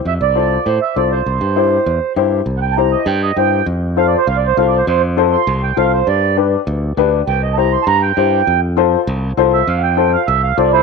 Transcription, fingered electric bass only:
\new Staff \with { instrumentName = "Fingered electric bass" } { \clef bass \time 4/4 \key c \major \tempo 4 = 200 f,8 c,4. a,8 r8 c,4 | c,8 g,4. e,8 r8 g,4 | c,2 g,4 g,4 | f,2 c,4 c,4 |
f,2 c,4 c,4 | g,2 d,4 d,4 | c,2 g,4 g,4 | f,2 c,4 c,4 |
f,2 c,4 c,4 | }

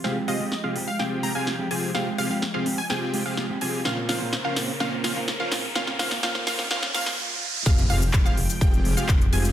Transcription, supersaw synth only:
\new Staff \with { instrumentName = "Supersaw synth" } { \time 4/4 \key f \minor \tempo 4 = 126 <c' f' g' aes' f''>16 r16 <c' f' g' aes' f''>16 r8 <c' f' g' aes' f''>16 r8 <c' f' g' aes' g''>8. <c' f' g' aes' f''>8 r16 <c' f' g' aes' aes''>8 | <c' f' g' aes' f''>16 r16 <c' f' g' aes' f''>16 r8 <c' f' g' aes' f''>16 r8 <c' f' g' aes' g''>8. <c' f' g' aes' f''>8 r16 <c' f' g' aes' aes''>8 | <des' f' bes' c'' f''>16 r16 <des' f' bes' c'' f''>16 r8 <des' f' bes' c'' f''>16 r8 <des' f' bes' c'' f''>16 r16 <des' f' bes' c'' f''>16 r8 <des' f' bes' c'' f''>16 r8 | <des' f' bes' c'' f''>16 r16 <des' f' bes' c'' f''>16 r16 <des' f' bes' c'' f''>16 r16 <des' f' bes' c'' f''>16 r16 <des' f' bes' c'' f''>16 r16 <des' f' bes' c'' f''>16 r4 r16 |
<c' f' g' aes' f''>16 r16 <c' f' g' aes' f''>16 r8 <c' f' g' aes' f''>16 r8 <c' f' g' aes' g''>8. <c' f' g' aes' f''>8 r16 <c' f' g' aes' aes''>8 | }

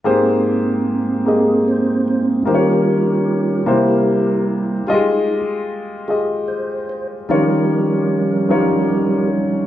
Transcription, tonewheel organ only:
<<
  \new Staff \with { instrumentName = "Tonewheel organ" } { \time 6/8 \key aes \major \tempo 4. = 50 r4. aes'8 c''8 c''8 | <g' bes'>2~ <g' bes'>8 r8 | r4. aes'8 c''8 c''8 | <des' g' bes'>2~ <des' g' bes'>8 r8 | }
  \new Staff \with { instrumentName = "Tonewheel organ" } { \time 6/8 \key aes \major <aes bes c'>2. | <g des' f'>4. <g bes e'>4. | <aes ees' g'>8 r2 r8 | <f g>2. | }
>>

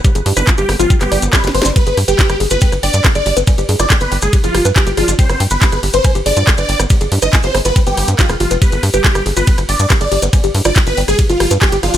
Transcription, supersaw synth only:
\new Staff \with { instrumentName = "Supersaw synth" } { \time 4/4 \tempo 4 = 140 r8. b'16 r16 g'16 r16 f'16 r16 g'8 r16 b'16 r16 c''16 r16 | b'8 r16 g'8. r16 b'8 r16 d''8 r16 d''8 r16 | r8. d''16 r16 b'16 r16 aes'16 r16 f'8 r16 g'16 r16 f'16 r16 | c''8 r16 b'8. r16 c''8 r16 d''8 r16 d''8 r16 |
r8. ees''16 r16 c''16 r16 b'16 r16 g'8 r16 f'16 r16 f'16 r16 | b'8 r16 g'8. r16 b'8 r16 d''8 r16 d''8 r16 | r8. d''16 r16 b'16 r16 aes'16 r16 f'8 r16 g'16 r16 f'16 r16 | }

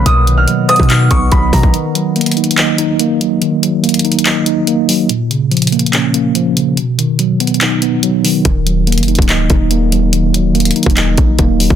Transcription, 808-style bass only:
\new Staff \with { instrumentName = "808-style bass" } { \clef bass \time 4/4 \key ees \minor \tempo 4 = 143 b,,4 r8. b,8. b,,8 b,,8 b,16 b,,16 | r1 | r1 | r1 |
r1 | ees,,4~ ees,,16 f,,8 des,,8. ees,,4.~ | ees,,4. r16 ees,,8. bes,,8 ees,,8. ees,,16 | }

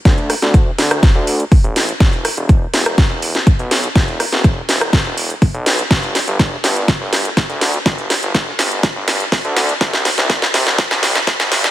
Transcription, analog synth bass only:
\new Staff \with { instrumentName = "Analog synth bass" } { \clef bass \time 4/4 \key e \minor \tempo 4 = 123 d,8 r16 d,8 r16 d,8 r16 d,8 r8 a,,8 r16 | e,,8 r16 e,,8 r16 e,,8 r16 e,,8 r8 b,,8 r16 | e,,8 r16 e,,8 r16 e,,8 r16 e,,8 r8 b,,8 r16 | g,,8 r16 g,,8 r16 g,,8 r16 g,,8 r8 d,8 r16 |
g,,8 r16 g,,8 r16 g,,8 r16 g,,8 r8 d,8 r16 | c,8 r16 c,8 r16 c,8 r16 c,8 r8 g,,8 r16 | }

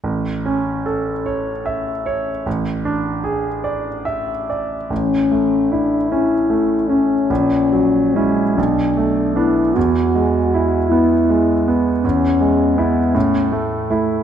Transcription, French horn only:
\new Staff \with { instrumentName = "French horn" } { \time 6/8 \key a \major \tempo 4. = 51 r2. | r2. | cis'4 d'8 e'4 cis'8~ | cis'4 gis8 d'4 e'8 |
fis'4. e'4 r8 | cis'4 b8 cis'8 r4 | }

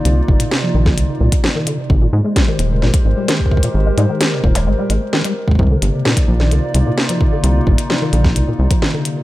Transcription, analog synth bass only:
\new Staff \with { instrumentName = "Analog synth bass" } { \clef bass \time 4/4 \key c \minor \tempo 4 = 130 c,8 g,,8 r8 bes,,8 c,8 c,8 r4 | aes,,8 aes,8 r8 ees,,8 aes,,8 aes,,8 r4 | aes,,8 aes,8 r8 ees,,8 aes,,8 aes,,8 r4 | c,8 g,,8 r8 bes,,8 c,8 c,8 r4 |
c,8 g,,8 r8 bes,,8 c,8 c,8 r4 | }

